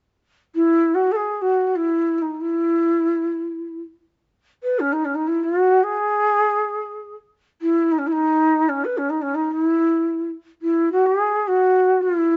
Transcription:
0, 0, Header, 1, 2, 480
1, 0, Start_track
1, 0, Tempo, 500000
1, 11873, End_track
2, 0, Start_track
2, 0, Title_t, "Ney"
2, 0, Program_c, 0, 77
2, 527, Note_on_c, 0, 64, 68
2, 909, Note_on_c, 0, 66, 66
2, 923, Note_off_c, 0, 64, 0
2, 1074, Note_on_c, 0, 69, 61
2, 1088, Note_off_c, 0, 66, 0
2, 1113, Note_on_c, 0, 68, 66
2, 1123, Note_off_c, 0, 69, 0
2, 1360, Note_on_c, 0, 66, 66
2, 1375, Note_off_c, 0, 68, 0
2, 1606, Note_off_c, 0, 66, 0
2, 1606, Note_on_c, 0, 66, 49
2, 1687, Note_on_c, 0, 64, 72
2, 1702, Note_off_c, 0, 66, 0
2, 2093, Note_off_c, 0, 64, 0
2, 2093, Note_on_c, 0, 64, 56
2, 2130, Note_on_c, 0, 63, 61
2, 2139, Note_off_c, 0, 64, 0
2, 2313, Note_on_c, 0, 64, 66
2, 2327, Note_off_c, 0, 63, 0
2, 3676, Note_off_c, 0, 64, 0
2, 4446, Note_on_c, 0, 71, 61
2, 4605, Note_on_c, 0, 61, 60
2, 4619, Note_off_c, 0, 71, 0
2, 4729, Note_on_c, 0, 63, 63
2, 4743, Note_off_c, 0, 61, 0
2, 4848, Note_on_c, 0, 61, 59
2, 4862, Note_off_c, 0, 63, 0
2, 4944, Note_on_c, 0, 63, 63
2, 4959, Note_off_c, 0, 61, 0
2, 5065, Note_on_c, 0, 64, 69
2, 5080, Note_off_c, 0, 63, 0
2, 5218, Note_on_c, 0, 66, 75
2, 5233, Note_off_c, 0, 64, 0
2, 5600, Note_on_c, 0, 68, 86
2, 5614, Note_off_c, 0, 66, 0
2, 6865, Note_off_c, 0, 68, 0
2, 7311, Note_on_c, 0, 64, 75
2, 7600, Note_on_c, 0, 63, 73
2, 7615, Note_off_c, 0, 64, 0
2, 7666, Note_on_c, 0, 61, 64
2, 7680, Note_off_c, 0, 63, 0
2, 7748, Note_on_c, 0, 64, 71
2, 7762, Note_off_c, 0, 61, 0
2, 7796, Note_on_c, 0, 63, 77
2, 7805, Note_off_c, 0, 64, 0
2, 8341, Note_on_c, 0, 61, 70
2, 8356, Note_off_c, 0, 63, 0
2, 8492, Note_on_c, 0, 71, 64
2, 8507, Note_off_c, 0, 61, 0
2, 8618, Note_on_c, 0, 61, 66
2, 8632, Note_off_c, 0, 71, 0
2, 8735, Note_on_c, 0, 63, 69
2, 8749, Note_off_c, 0, 61, 0
2, 8850, Note_on_c, 0, 61, 67
2, 8865, Note_off_c, 0, 63, 0
2, 8973, Note_on_c, 0, 63, 68
2, 8987, Note_off_c, 0, 61, 0
2, 9133, Note_on_c, 0, 64, 76
2, 9147, Note_off_c, 0, 63, 0
2, 9894, Note_off_c, 0, 64, 0
2, 10195, Note_on_c, 0, 64, 70
2, 10458, Note_off_c, 0, 64, 0
2, 10483, Note_on_c, 0, 66, 74
2, 10620, Note_on_c, 0, 68, 78
2, 10635, Note_off_c, 0, 66, 0
2, 11019, Note_on_c, 0, 66, 77
2, 11033, Note_off_c, 0, 68, 0
2, 11538, Note_on_c, 0, 64, 69
2, 11552, Note_off_c, 0, 66, 0
2, 11873, Note_off_c, 0, 64, 0
2, 11873, End_track
0, 0, End_of_file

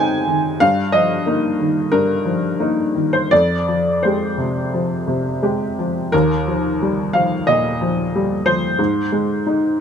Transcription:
0, 0, Header, 1, 2, 480
1, 0, Start_track
1, 0, Key_signature, -3, "major"
1, 0, Tempo, 651466
1, 453, Time_signature, 4, 2, 24, 8
1, 1414, Tempo, 700117
1, 4294, Tempo, 664452
1, 6955, End_track
2, 0, Start_track
2, 0, Title_t, "Upright piano"
2, 0, Program_c, 0, 0
2, 0, Control_c, 0, 64, 127
2, 0, Note_on_c, 0, 44, 58
2, 0, Note_on_c, 0, 51, 46
2, 0, Note_on_c, 0, 56, 47
2, 0, Note_on_c, 0, 60, 41
2, 0, Note_on_c, 0, 63, 46
2, 0, Note_on_c, 0, 75, 100
2, 0, Note_on_c, 0, 79, 107
2, 0, Note_on_c, 0, 80, 80
2, 118, Note_off_c, 0, 56, 0
2, 182, Note_off_c, 0, 60, 0
2, 183, Note_off_c, 0, 63, 0
2, 202, Note_off_c, 0, 51, 0
2, 202, Note_on_c, 0, 51, 44
2, 444, Note_off_c, 0, 80, 0
2, 444, Note_on_c, 0, 77, 95
2, 448, Note_off_c, 0, 51, 0
2, 450, Note_on_c, 0, 43, 57
2, 467, Control_c, 0, 64, 0
2, 469, Note_off_c, 0, 44, 0
2, 472, Note_off_c, 0, 75, 0
2, 474, Note_off_c, 0, 79, 0
2, 570, Control_c, 0, 64, 127
2, 681, Note_on_c, 0, 75, 79
2, 689, Note_off_c, 0, 77, 0
2, 692, Note_on_c, 0, 53, 38
2, 930, Note_on_c, 0, 58, 40
2, 935, Note_on_c, 0, 63, 40
2, 1075, Note_off_c, 0, 53, 0
2, 1147, Note_off_c, 0, 58, 0
2, 1149, Note_off_c, 0, 63, 0
2, 1175, Note_on_c, 0, 51, 39
2, 1384, Note_off_c, 0, 43, 0
2, 1408, Note_off_c, 0, 75, 0
2, 1412, Note_on_c, 0, 70, 78
2, 1416, Note_on_c, 0, 43, 46
2, 1553, Note_off_c, 0, 51, 0
2, 1644, Note_on_c, 0, 53, 40
2, 1880, Note_on_c, 0, 58, 37
2, 1883, Note_on_c, 0, 63, 41
2, 2025, Note_off_c, 0, 53, 0
2, 2097, Note_off_c, 0, 58, 0
2, 2099, Note_off_c, 0, 63, 0
2, 2121, Note_on_c, 0, 51, 41
2, 2243, Note_off_c, 0, 70, 0
2, 2244, Note_on_c, 0, 72, 68
2, 2340, Note_off_c, 0, 43, 0
2, 2366, Note_off_c, 0, 51, 0
2, 2366, Note_off_c, 0, 72, 0
2, 2368, Note_on_c, 0, 74, 86
2, 2378, Control_c, 0, 64, 0
2, 2380, Note_on_c, 0, 41, 49
2, 2519, Control_c, 0, 64, 127
2, 2622, Note_on_c, 0, 53, 34
2, 2858, Note_off_c, 0, 74, 0
2, 2859, Note_on_c, 0, 72, 54
2, 2875, Note_on_c, 0, 56, 34
2, 2876, Note_on_c, 0, 67, 36
2, 3007, Note_off_c, 0, 53, 0
2, 3085, Note_off_c, 0, 56, 0
2, 3086, Note_off_c, 0, 67, 0
2, 3100, Note_on_c, 0, 48, 35
2, 3318, Note_off_c, 0, 41, 0
2, 3348, Note_on_c, 0, 53, 37
2, 3482, Note_off_c, 0, 48, 0
2, 3576, Note_on_c, 0, 48, 40
2, 3724, Note_off_c, 0, 53, 0
2, 3816, Note_off_c, 0, 72, 0
2, 3818, Note_on_c, 0, 56, 36
2, 3822, Note_on_c, 0, 67, 37
2, 3959, Note_off_c, 0, 48, 0
2, 4034, Note_off_c, 0, 56, 0
2, 4036, Note_off_c, 0, 67, 0
2, 4067, Note_on_c, 0, 53, 37
2, 4296, Note_on_c, 0, 70, 86
2, 4301, Note_off_c, 0, 53, 0
2, 4308, Note_on_c, 0, 39, 55
2, 4309, Control_c, 0, 64, 0
2, 4419, Control_c, 0, 64, 127
2, 4550, Note_on_c, 0, 53, 36
2, 4800, Note_on_c, 0, 55, 40
2, 4931, Note_off_c, 0, 53, 0
2, 5023, Note_off_c, 0, 70, 0
2, 5027, Note_on_c, 0, 77, 69
2, 5035, Note_on_c, 0, 53, 37
2, 5175, Note_off_c, 0, 55, 0
2, 5239, Note_off_c, 0, 39, 0
2, 5264, Note_off_c, 0, 77, 0
2, 5269, Note_on_c, 0, 75, 79
2, 5280, Note_on_c, 0, 46, 43
2, 5412, Note_off_c, 0, 53, 0
2, 5516, Note_on_c, 0, 53, 41
2, 5655, Note_off_c, 0, 46, 0
2, 5764, Note_on_c, 0, 55, 41
2, 5891, Note_off_c, 0, 53, 0
2, 5982, Note_off_c, 0, 75, 0
2, 5983, Note_on_c, 0, 72, 81
2, 5987, Note_on_c, 0, 53, 38
2, 6133, Note_off_c, 0, 55, 0
2, 6220, Note_on_c, 0, 44, 53
2, 6221, Note_off_c, 0, 53, 0
2, 6231, Control_c, 0, 64, 0
2, 6367, Control_c, 0, 64, 127
2, 6463, Note_on_c, 0, 56, 36
2, 6712, Note_on_c, 0, 63, 37
2, 6844, Note_off_c, 0, 56, 0
2, 6939, Note_off_c, 0, 72, 0
2, 6955, Note_off_c, 0, 44, 0
2, 6955, Note_off_c, 0, 63, 0
2, 6955, End_track
0, 0, End_of_file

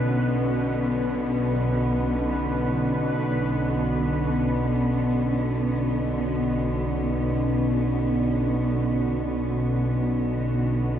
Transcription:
0, 0, Header, 1, 4, 480
1, 0, Start_track
1, 0, Key_signature, 2, "minor"
1, 0, Tempo, 500000
1, 10553, End_track
2, 0, Start_track
2, 0, Title_t, "Synth texture"
2, 0, Program_c, 0, 99
2, 0, Note_on_c, 0, 71, 70
2, 4502, Note_on_c, 0, 66, 74
2, 4526, Note_off_c, 0, 71, 0
2, 10553, Note_off_c, 0, 66, 0
2, 10553, End_track
3, 0, Start_track
3, 0, Title_t, "Cello section"
3, 0, Program_c, 1, 48
3, 0, Note_on_c, 1, 50, 56
3, 0, Note_on_c, 1, 59, 66
3, 0, Note_on_c, 1, 61, 55
3, 10553, Note_off_c, 1, 50, 0
3, 10553, Note_off_c, 1, 59, 0
3, 10553, Note_off_c, 1, 61, 0
3, 10553, End_track
4, 0, Start_track
4, 0, Title_t, "Synth drone"
4, 0, Program_c, 2, 95
4, 0, Note_on_c, 2, 35, 62
4, 0, Note_on_c, 2, 47, 64
4, 4501, Note_off_c, 2, 47, 0
4, 4504, Note_off_c, 2, 35, 0
4, 4512, Note_on_c, 2, 47, 64
4, 4515, Note_on_c, 2, 35, 62
4, 10553, Note_off_c, 2, 35, 0
4, 10553, Note_off_c, 2, 47, 0
4, 10553, End_track
0, 0, End_of_file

